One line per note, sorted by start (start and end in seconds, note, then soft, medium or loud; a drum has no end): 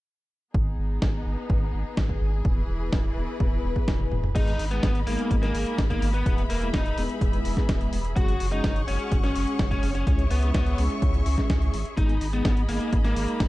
0.54 0.75 G#1 medium
0.54 2.43 B3 medium
0.54 2.43 D#4 medium
0.54 4.32 G#4 medium
0.54 kick loud
0.78 0.99 G#1 medium
0.90 1.06 B3 medium
0.90 1.06 D#4 medium
0.90 1.06 B4 loud
1.02 1.23 G#1 medium
1.02 kick loud
1.02 snare loud
1.26 1.36 G#1 medium
1.26 1.59 B3 medium
1.26 1.59 D#4 medium
1.26 1.59 B4 loud
1.50 1.70 G#1 medium
1.50 kick loud
1.62 2.06 B3 medium
1.62 2.06 D#4 medium
1.62 2.06 G#4 medium
1.73 1.84 G#1 medium
1.97 2.18 G#1 medium
1.97 kick loud
1.97 snare loud
2.09 2.25 B3 medium
2.09 2.25 D#4 medium
2.09 2.25 B4 medium
2.09 kick medium
2.21 2.42 G#1 medium
2.45 2.66 E1 medium
2.45 4.33 E3 medium
2.45 2.61 B3 medium
2.45 4.34 E4 medium
2.45 2.61 E4 medium
2.45 2.61 G#4 medium
2.45 4.34 B4 medium
2.45 2.61 B4 loud
2.45 kick loud
2.69 2.89 E1 medium
2.81 2.97 B3 medium
2.81 2.97 E4 medium
2.81 2.97 G#4 medium
2.81 2.97 B4 loud
2.93 3.13 E1 medium
2.93 kick loud
2.93 snare loud
3.16 3.27 E1 medium
3.16 3.49 B3 medium
3.16 3.49 E4 medium
3.16 3.49 G#4 medium
3.16 3.49 B4 loud
3.40 3.61 E1 medium
3.40 kick loud
3.52 3.97 B3 medium
3.52 3.97 E4 medium
3.52 3.97 G#4 medium
3.52 3.97 B4 medium
3.64 3.74 E1 loud
3.76 kick medium
3.88 4.09 E1 medium
3.88 kick loud
3.88 snare loud
3.88 high tom medium
4.00 4.16 B3 medium
4.00 4.16 E4 medium
4.00 4.16 G#4 medium
4.00 4.16 B4 medium
4.00 high tom medium
4.12 4.32 E1 medium
4.12 mid tom medium
4.24 mid tom medium
4.35 4.56 G#1 loud
4.35 4.52 G#3 medium
4.35 4.52 B3 medium
4.35 4.63 D#4 medium
4.35 4.52 D#4 medium
4.35 4.52 G#4 loud
4.35 13.48 G#4 medium
4.35 6.24 D#5 medium
4.35 8.13 B5 medium
4.35 kick loud
4.35 closed hi-hat medium
4.35 crash medium
4.47 closed hi-hat soft
4.59 4.80 G#1 medium
4.59 open hi-hat loud
4.71 4.87 G#3 medium
4.71 4.99 B3 medium
4.71 4.87 B3 medium
4.71 4.87 D#4 medium
4.71 4.87 G#4 loud
4.71 closed hi-hat soft
4.83 5.04 G#1 medium
4.83 kick loud
4.83 snare loud
4.83 closed hi-hat medium
4.95 closed hi-hat soft
5.07 5.17 G#1 medium
5.07 5.40 G#3 loud
5.07 5.35 A#3 medium
5.07 5.40 B3 medium
5.07 5.40 D#4 medium
5.07 5.40 G#4 loud
5.07 open hi-hat loud
5.19 closed hi-hat soft
5.31 5.51 G#1 medium
5.31 kick loud
5.31 closed hi-hat medium
5.43 5.87 G#3 medium
5.43 5.79 A#3 medium
5.43 5.87 D#4 medium
5.43 5.87 G#4 medium
5.43 snare soft
5.43 closed hi-hat soft
5.54 5.65 G#1 medium
5.54 open hi-hat loud
5.67 closed hi-hat soft
5.78 5.99 G#1 medium
5.78 kick loud
5.78 snare loud
5.78 closed hi-hat medium
5.90 6.06 G#3 medium
5.90 6.09 A#3 medium
5.90 6.06 B3 medium
5.90 6.06 D#4 medium
5.90 6.06 G#4 medium
5.90 kick medium
5.90 closed hi-hat soft
6.02 6.23 G#1 medium
6.02 open hi-hat loud
6.14 6.42 B3 medium
6.14 closed hi-hat soft
6.26 6.47 E1 loud
6.26 6.42 G#3 medium
6.26 6.42 B3 medium
6.26 6.42 E4 medium
6.26 6.42 G#4 loud
6.26 8.14 B4 medium
6.26 8.14 E5 medium
6.26 kick loud
6.26 closed hi-hat medium
6.38 closed hi-hat soft
6.50 6.70 E1 medium
6.50 6.68 A#3 medium
6.50 open hi-hat loud
6.62 6.78 G#3 medium
6.62 6.78 B3 medium
6.62 6.78 E4 medium
6.62 6.78 G#4 loud
6.62 closed hi-hat soft
6.74 6.94 E1 medium
6.74 7.01 D#4 medium
6.74 kick loud
6.74 snare loud
6.74 closed hi-hat medium
6.86 closed hi-hat soft
6.97 7.08 E1 medium
6.97 7.30 G#3 loud
6.97 7.30 B3 medium
6.97 7.30 E4 medium
6.97 7.30 G#4 loud
6.97 open hi-hat loud
7.09 closed hi-hat soft
7.21 7.42 E1 medium
7.21 kick loud
7.21 closed hi-hat medium
7.33 7.78 G#3 medium
7.33 7.78 B3 medium
7.33 7.78 E4 medium
7.33 7.78 G#4 medium
7.33 closed hi-hat soft
7.45 7.55 E1 loud
7.45 open hi-hat loud
7.57 kick medium
7.57 snare soft
7.57 closed hi-hat soft
7.69 7.90 E1 medium
7.69 kick loud
7.69 snare loud
7.69 closed hi-hat medium
7.81 7.97 G#3 medium
7.81 7.97 B3 medium
7.81 7.97 E4 medium
7.81 7.97 G#4 medium
7.81 closed hi-hat soft
7.93 8.13 E1 medium
7.93 open hi-hat loud
8.05 closed hi-hat soft
8.16 8.37 F#1 loud
8.16 8.33 G#3 medium
8.16 8.33 C#4 medium
8.16 8.33 F#4 medium
8.16 8.44 F#4 medium
8.16 8.33 G#4 loud
8.16 11.94 C#5 medium
8.16 10.05 F#5 medium
8.16 10.05 C#6 medium
8.16 kick loud
8.16 closed hi-hat medium
8.28 closed hi-hat soft
8.40 8.61 F#1 medium
8.40 open hi-hat loud
8.52 8.68 G#3 loud
8.52 8.68 C#4 medium
8.52 8.80 D#4 medium
8.52 8.68 F#4 medium
8.52 8.68 G#4 loud
8.52 closed hi-hat soft
8.64 8.85 F#1 medium
8.64 kick loud
8.64 snare loud
8.64 closed hi-hat medium
8.76 closed hi-hat soft
8.88 8.98 F#1 medium
8.88 9.21 G#3 loud
8.88 9.15 C#4 medium
8.88 9.21 C#4 medium
8.88 9.21 F#4 medium
8.88 9.21 G#4 loud
8.88 open hi-hat loud
9.00 closed hi-hat soft
9.12 9.32 F#1 medium
9.12 kick loud
9.12 closed hi-hat medium
9.24 9.68 G#3 medium
9.24 9.68 C#4 medium
9.24 9.60 C#4 medium
9.24 9.68 F#4 medium
9.24 9.68 G#4 medium
9.24 snare soft
9.24 closed hi-hat soft
9.35 9.46 F#1 medium
9.35 open hi-hat loud
9.47 closed hi-hat soft
9.59 9.80 F#1 medium
9.59 kick loud
9.59 snare loud
9.59 closed hi-hat medium
9.71 9.87 G#3 medium
9.71 9.90 C#4 medium
9.71 9.87 C#4 medium
9.71 9.87 F#4 medium
9.71 9.87 G#4 medium
9.71 kick medium
9.71 closed hi-hat soft
9.83 10.04 F#1 loud
9.83 open hi-hat loud
9.95 10.23 C#4 medium
9.95 closed hi-hat soft
10.07 10.28 C#2 loud
10.07 10.23 G#3 medium
10.07 10.23 C#4 medium
10.07 10.23 E4 medium
10.07 10.23 G#4 loud
10.07 11.95 E5 medium
10.07 11.95 C#6 medium
10.07 kick loud
10.07 closed hi-hat medium
10.19 closed hi-hat soft
10.31 10.51 C#2 medium
10.31 10.49 B3 medium
10.31 open hi-hat loud
10.43 10.59 G#3 medium
10.43 10.59 C#4 medium
10.43 10.59 E4 medium
10.43 10.59 G#4 loud
10.43 closed hi-hat soft
10.54 10.75 C#2 medium
10.54 10.82 B3 medium
10.54 kick loud
10.54 snare loud
10.54 closed hi-hat medium
10.66 closed hi-hat soft
10.78 10.89 C#2 medium
10.78 11.11 G#3 medium
10.78 11.11 C#4 medium
10.78 11.11 E4 medium
10.78 11.11 G#4 loud
10.78 open hi-hat loud
10.90 closed hi-hat soft
11.02 11.23 C#2 medium
11.02 kick loud
11.02 closed hi-hat medium
11.14 11.35 G#3 medium
11.14 11.35 C#4 medium
11.14 11.35 E4 medium
11.14 11.35 G#4 medium
11.14 closed hi-hat soft
11.26 11.36 C#2 medium
11.26 open hi-hat loud
11.38 11.58 G#3 loud
11.38 11.58 C#4 medium
11.38 11.58 E4 medium
11.38 11.58 G#4 loud
11.38 kick medium
11.38 snare soft
11.38 closed hi-hat soft
11.50 11.71 C#2 medium
11.50 kick loud
11.50 snare loud
11.50 closed hi-hat medium
11.62 11.78 G#3 medium
11.62 11.78 C#4 medium
11.62 11.78 E4 medium
11.62 11.78 G#4 medium
11.62 closed hi-hat soft
11.74 11.84 G#1 medium
11.74 open hi-hat loud
11.85 closed hi-hat soft
11.97 12.18 G#1 loud
11.97 12.14 G#3 medium
11.97 12.14 B3 medium
11.97 12.25 D#4 medium
11.97 12.14 D#4 medium
11.97 12.14 G#4 loud
11.97 13.48 D#5 medium
11.97 13.48 B5 medium
11.97 kick loud
11.97 closed hi-hat medium
12.09 closed hi-hat soft
12.21 12.42 G#1 medium
12.21 open hi-hat loud
12.33 12.49 G#3 medium
12.33 12.61 B3 medium
12.33 12.49 B3 medium
12.33 12.49 D#4 medium
12.33 12.49 G#4 loud
12.33 closed hi-hat soft
12.45 12.66 G#1 medium
12.45 kick loud
12.45 snare loud
12.45 closed hi-hat medium
12.57 closed hi-hat soft
12.69 12.79 G#1 medium
12.69 13.02 G#3 medium
12.69 12.96 A#3 medium
12.69 13.02 B3 medium
12.69 13.02 D#4 medium
12.69 13.02 G#4 loud
12.69 open hi-hat loud
12.81 closed hi-hat soft
12.93 13.13 G#1 medium
12.93 kick loud
12.93 closed hi-hat medium
13.04 13.48 G#3 medium
13.04 13.41 A#3 medium
13.04 13.48 D#4 medium
13.04 snare soft
13.04 closed hi-hat soft
13.16 13.27 G#1 loud
13.16 open hi-hat loud
13.28 closed hi-hat soft
13.40 13.48 G#1 medium
13.40 kick loud
13.40 snare loud
13.40 closed hi-hat medium